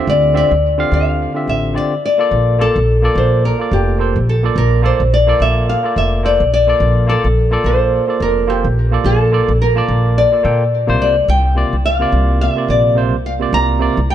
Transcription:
Already playing: tine electric piano D3 C4 F4 G4 E5
0.07 upright bass D2, nylon-string guitar D5
0.33 tine electric piano D3 C4 F4 G4 E5, nylon-string guitar D5
0.51 upright bass D2
0.77 tine electric piano D3 C4 F4 G4 F5
0.92 upright bass D2, nylon-string guitar F5
1.34 tine electric piano D3 C4 F4 G4 E5
1.48 upright bass A1, nylon-string guitar E5
1.73 tine electric piano D3 C4 F4 G4 D5
1.77 nylon-string guitar D5
2.05 nylon-string guitar D5
2.18 tine electric piano A#3 F4 A4 D5
2.31 upright bass A#1
2.58 tine electric piano A#3 F4 A4 D5, nylon-string guitar A4
2.76 upright bass A#1
3.02 tine electric piano A#3 F4 A4 D5
3.15 upright bass A#1, nylon-string guitar C5
3.45 nylon-string guitar A#4
3.59 tine electric piano A#3 F4 A4 D5
3.71 upright bass F1, nylon-string guitar G4
3.98 tine electric piano A#3 F4 A4 C5
4.16 upright bass A#1
4.29 nylon-string guitar A4
4.43 tine electric piano A#3 F4 A4 D5
4.56 upright bass A#1, nylon-string guitar A#4
4.82 tine electric piano A#3 F4 A4 D5, nylon-string guitar C5
5.00 upright bass A#1
5.14 nylon-string guitar D5
5.27 tine electric piano A#3 F4 A4 D5
5.40 upright bass A#1, nylon-string guitar E5
5.69 nylon-string guitar F5
5.83 tine electric piano A#3 F4 A4 D5
5.96 upright bass F1, nylon-string guitar E5
6.23 tine electric piano A#3 F4 A4 C5, nylon-string guitar D5
6.40 upright bass A#1
6.54 nylon-string guitar D5
6.67 tine electric piano A#3 F4 A4 D5
6.80 upright bass A#1
7.07 tine electric piano A#3 F4 A4 D5, nylon-string guitar A4
7.24 upright bass A#1
7.51 tine electric piano A#3 F4 A4 D5
7.64 upright bass A#1, nylon-string guitar C5
8.07 tine electric piano A#3 F4 A4 D5
8.20 upright bass F1, nylon-string guitar A#4
8.47 tine electric piano A#3 F4 A4 C5, nylon-string guitar G4
8.64 upright bass A#1
8.91 tine electric piano A#3 F4 A4 D5
9.04 upright bass A#1, nylon-string guitar A4
9.31 tine electric piano A#3 F4 A4 D5
9.48 upright bass A#1
9.62 nylon-string guitar A#4
9.75 tine electric piano A#3 F4 D5 A5
9.88 upright bass A#1
10.18 nylon-string guitar D5
10.31 tine electric piano A#3 F4 A4 D5
10.43 upright bass A#2, tine electric piano A#3 F4 A4 G5
10.87 upright bass C2, tine electric piano C3 A#3 F4 C5
11.02 nylon-string guitar D5
11.28 upright bass C2, nylon-string guitar G5
11.55 tine electric piano C3 A#3 F4 D5
11.73 upright bass C2
11.85 nylon-string guitar F5
11.99 tine electric piano C3 A#3 F4 D5
12.12 upright bass C2
12.41 nylon-string guitar E5
12.55 tine electric piano C3 A#3 F4 D5
12.68 upright bass A#1, nylon-string guitar D5
12.95 tine electric piano C3 A#3 F4 C5
13.12 upright bass C2
13.26 nylon-string guitar F5
13.39 tine electric piano C3 A#3 F4 D5
13.53 upright bass C2, nylon-string guitar A#5
13.79 tine electric piano C3 A#3 F4 D5
13.97 upright bass C2
14.10 nylon-string guitar G5

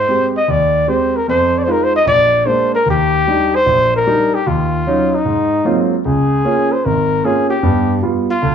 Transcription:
Already playing: trumpet C5
0.08 grand piano G#3 C4 G4
0.36 trumpet D#5
0.48 grand piano D#2, trumpet D5
0.88 grand piano G#3 C4 G4, trumpet C5
1.16 trumpet A#4
1.28 grand piano F2, trumpet C5
1.58 trumpet D5
1.64 grand piano G#3 D#4, trumpet C5
1.68 grand piano F4, trumpet A#4
1.83 trumpet C5
1.96 trumpet D#5
2.06 grand piano A#1, trumpet D5
2.46 grand piano G#3 A#3 D4, trumpet C5
2.75 trumpet A#4
2.86 grand piano D#2
2.90 trumpet G4
3.27 grand piano G3 D4 D#4
3.55 trumpet C5
3.66 grand piano A#1
3.96 trumpet A#4
4.07 grand piano G3 D4 D#4
4.34 trumpet G4
4.47 grand piano D#2, trumpet F4
4.87 grand piano F#3 C#4 D#4
5.14 trumpet D#4
5.25 grand piano G#2
5.65 grand piano F#3 G#3 A#3 C4 F4
6.05 grand piano C#2, trumpet G#4
6.45 grand piano A#3 C#4 F4
6.72 trumpet C5
6.85 grand piano G#1, trumpet A#4
7.24 grand piano A#3 C#4 F4, trumpet G#4
7.50 trumpet G4
7.63 grand piano G2 B3
8.03 grand piano G3 B3 F4
8.30 trumpet F4
8.42 grand piano D2

